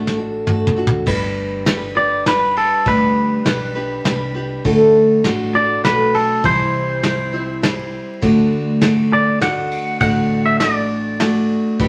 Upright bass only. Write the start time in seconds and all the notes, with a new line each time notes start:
Already playing: A1
1.07 G1
2.86 D2
3.46 B1
4.06 C2
4.65 D2
5.25 A1
5.84 B1
6.44 C2
8.23 D2
10.01 A1
11.80 G1